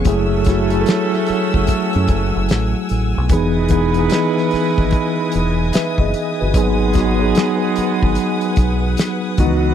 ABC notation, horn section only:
X:1
M:4/4
L:1/8
Q:"Swing 16ths" 1/4=74
K:G#phr
V:1 name="Horn section"
[E,A,CA]6- [E,A,CA] z | [G,B,EB]6- [G,B,EB] z | [D,G,B,G]6 z [D,F,B,F] |]